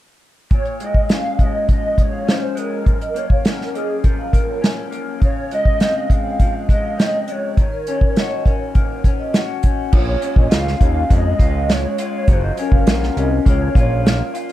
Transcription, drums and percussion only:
0.51 kick loud
0.51 closed hi-hat medium
0.65 closed hi-hat soft
0.80 closed hi-hat medium
0.94 kick medium
1.09 snare medium
1.09 closed hi-hat medium
1.39 kick medium
1.39 closed hi-hat medium
1.69 kick medium
1.69 closed hi-hat medium
1.98 kick medium
1.98 closed hi-hat medium
2.28 snare medium
2.28 closed hi-hat medium
2.57 closed hi-hat medium
2.86 kick medium
2.86 closed hi-hat medium
3.01 closed hi-hat soft
3.16 closed hi-hat medium
3.30 kick medium
3.45 snare medium
3.45 closed hi-hat medium
3.61 snare soft
3.75 closed hi-hat medium
4.04 kick medium
4.04 closed hi-hat medium
4.33 kick medium
4.33 closed hi-hat medium
4.64 snare medium
4.64 closed hi-hat medium
4.92 closed hi-hat medium
5.22 kick medium
5.22 closed hi-hat medium
5.51 closed hi-hat medium
5.65 kick medium
5.80 snare medium
5.80 closed hi-hat medium
6.10 kick medium
6.10 closed hi-hat medium
6.40 kick medium
6.40 closed hi-hat medium
6.69 kick medium
6.69 closed hi-hat medium
6.99 snare medium
6.99 closed hi-hat medium
7.28 closed hi-hat medium
7.57 kick medium
7.57 closed hi-hat medium
7.87 closed hi-hat medium
8.01 kick medium
8.16 snare medium
8.16 closed hi-hat medium
8.46 kick medium
8.46 closed hi-hat medium
8.75 kick medium
8.75 closed hi-hat medium
9.04 kick medium
9.04 closed hi-hat medium
9.34 snare medium
9.34 closed hi-hat medium
9.63 kick medium
9.63 closed hi-hat medium
9.93 kick loud
9.93 crash medium
10.22 closed hi-hat medium
10.36 kick medium
10.51 snare loud
10.51 closed hi-hat loud
10.67 snare soft
10.81 kick medium
10.81 closed hi-hat medium
11.10 kick medium
11.10 closed hi-hat medium
11.39 kick loud
11.39 closed hi-hat medium
11.69 snare loud
11.69 closed hi-hat medium
11.98 closed hi-hat medium
12.28 kick loud
12.28 closed hi-hat medium
12.57 closed hi-hat medium
12.72 kick medium
12.87 snare loud
12.87 closed hi-hat loud
13.03 snare soft
13.17 closed hi-hat medium
13.46 kick medium
13.46 closed hi-hat medium
13.75 kick medium
13.75 closed hi-hat medium
14.06 snare loud
14.06 closed hi-hat medium
14.35 closed hi-hat medium
14.49 closed hi-hat soft

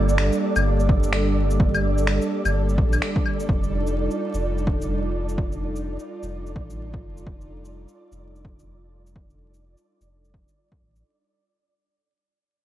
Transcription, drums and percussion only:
0.09 shaker medium
0.18 finger snap loud
0.32 shaker soft
0.56 claves medium
0.56 shaker medium
0.80 shaker soft
0.89 kick loud
1.03 shaker medium
1.13 finger snap loud
1.51 shaker medium
1.60 kick loud
1.74 claves medium
1.74 shaker soft
1.98 shaker medium
2.07 finger snap loud
2.22 shaker soft
2.45 claves medium
2.45 shaker medium
2.69 shaker soft
2.78 kick loud
2.93 claves soft
2.93 shaker medium
3.02 finger snap loud
3.16 kick loud
3.26 claves soft
3.40 shaker medium
3.49 kick loud
3.63 shaker soft
3.87 shaker soft
4.11 shaker soft
4.34 shaker soft
4.58 shaker soft
4.67 kick medium
4.82 shaker soft
5.29 shaker soft
5.38 kick loud
5.52 shaker soft
5.76 shaker soft
5.99 shaker soft
6.23 shaker soft
6.47 shaker soft
6.56 kick medium
6.70 shaker medium
6.94 kick medium
7.18 shaker soft
7.27 kick loud
7.41 shaker soft
7.65 shaker medium
7.88 shaker soft
8.12 shaker soft
8.36 shaker soft
8.45 kick medium
8.59 shaker medium
9.07 shaker soft
9.16 kick loud
9.30 shaker soft
9.54 shaker medium
9.77 shaker soft
10.01 shaker soft
10.25 shaker soft
10.34 kick medium
10.48 shaker medium
10.72 kick medium
10.96 shaker soft

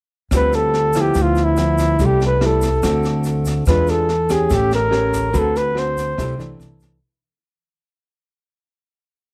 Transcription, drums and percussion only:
0.31 kick medium
0.31 cross-stick medium
0.31 snare soft
0.31 shaker medium
0.52 snare soft
0.52 shaker soft
0.74 snare soft
0.93 kick soft
0.93 cross-stick medium
0.93 snare soft
0.93 shaker medium
1.14 kick medium
1.14 snare soft
1.14 shaker medium
1.35 snare soft
1.35 shaker soft
1.57 cross-stick medium
1.57 snare soft
1.57 shaker medium
1.78 kick soft
1.78 snare soft
1.78 shaker medium
1.99 kick medium
1.99 snare soft
1.99 shaker medium
2.20 snare soft
2.20 shaker soft
2.41 cross-stick medium
2.41 snare soft
2.61 kick soft
2.61 snare soft
2.61 shaker medium
2.83 kick medium
2.83 cross-stick medium
2.83 snare soft
2.83 shaker medium
3.03 snare soft
3.03 shaker soft
3.24 snare soft
3.24 shaker medium
3.45 kick soft
3.45 snare soft
3.45 shaker medium
3.66 kick medium
3.66 cross-stick medium
3.66 snare soft
3.66 shaker medium
3.87 snare soft
3.87 shaker soft
4.09 snare soft
4.29 kick soft
4.29 cross-stick medium
4.29 snare soft
4.29 shaker medium
4.50 kick medium
4.50 snare soft
4.50 shaker medium
4.71 snare soft
4.71 shaker soft
4.92 cross-stick medium
4.92 snare soft
5.13 kick soft
5.13 snare soft
5.13 shaker medium
5.34 kick medium
5.34 snare soft
5.34 shaker medium
5.56 snare soft
5.56 shaker soft
5.77 cross-stick medium
5.77 snare soft
5.97 kick soft
5.97 snare soft
5.97 shaker medium
6.18 kick medium
6.18 cross-stick medium
6.18 snare soft
6.18 shaker medium
6.40 snare soft
6.40 shaker soft
6.60 snare soft
6.60 shaker medium
6.80 kick soft
6.80 snare soft
6.80 shaker medium

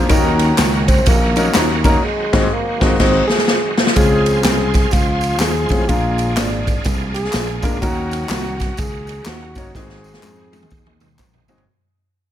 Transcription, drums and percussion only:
0.09 kick loud
0.09 ride medium
0.09 tambourine medium
0.39 ride medium
0.39 tambourine medium
0.58 snare loud
0.58 clap loud
0.58 ride medium
0.58 tambourine loud
0.88 kick loud
0.88 ride medium
0.88 tambourine medium
1.06 kick loud
1.06 ride medium
1.06 tambourine medium
1.36 ride medium
1.36 tambourine medium
1.54 snare loud
1.54 clap loud
1.54 ride medium
1.54 tambourine loud
1.84 kick loud
1.84 ride medium
1.84 tambourine medium
2.33 kick loud
2.33 snare loud
2.33 crash medium
2.81 kick loud
2.81 snare loud
3.00 kick loud
3.00 snare loud
3.00 crash medium
3.29 snare medium
3.38 snare medium
3.48 snare medium
3.78 snare loud
3.87 snare loud
3.96 kick loud
3.96 ride medium
3.96 tambourine medium
4.26 ride medium
4.26 tambourine medium
4.44 snare loud
4.44 clap loud
4.44 ride medium
4.44 tambourine loud
4.74 kick loud
4.74 snare soft
4.74 ride medium
4.74 tambourine medium
4.91 kick loud
4.91 ride medium
4.91 tambourine medium
5.21 ride medium
5.21 tambourine medium
5.40 snare loud
5.40 clap loud
5.40 ride medium
5.40 tambourine loud
5.69 kick loud
5.69 ride medium
5.69 tambourine medium
5.89 kick loud
5.89 ride medium
5.89 tambourine medium
6.18 ride medium
6.18 tambourine medium
6.37 snare loud
6.37 clap loud
6.37 ride medium
6.37 tambourine loud
6.67 kick medium
6.67 ride medium
6.67 tambourine medium
6.84 kick loud
6.84 ride medium
6.84 tambourine medium
7.14 ride medium
7.14 tambourine medium
7.25 snare soft
7.33 snare loud
7.33 clap loud
7.33 ride medium
7.33 tambourine loud
7.62 kick loud
7.62 ride medium
7.62 tambourine medium
7.82 kick loud
7.82 ride medium
7.82 tambourine medium
8.11 ride medium
8.11 tambourine medium
8.29 snare loud
8.29 clap loud
8.29 ride medium
8.29 tambourine loud
8.60 kick medium
8.60 snare soft
8.60 ride medium
8.60 tambourine medium
8.77 kick loud
8.77 ride medium
8.77 tambourine medium
9.07 ride medium
9.07 tambourine medium
9.26 snare loud
9.26 clap loud
9.26 ride medium
9.26 tambourine loud
9.55 kick loud
9.55 ride medium
9.55 tambourine medium
9.75 kick loud
9.75 snare medium
9.75 tambourine medium
9.89 snare medium
10.04 tambourine medium
10.14 snare medium
10.23 clap loud
10.23 high tom medium
10.23 tambourine loud
10.53 high tom medium
10.53 tambourine medium
10.62 mid tom medium
10.70 kick loud
10.70 tambourine medium
10.86 mid tom medium
11.00 mid tom medium
11.00 tambourine medium
11.19 kick medium
11.19 clap loud
11.19 mid tom loud
11.19 tambourine loud
11.34 floor tom medium
11.48 floor tom loud
11.48 tambourine medium
11.58 floor tom loud

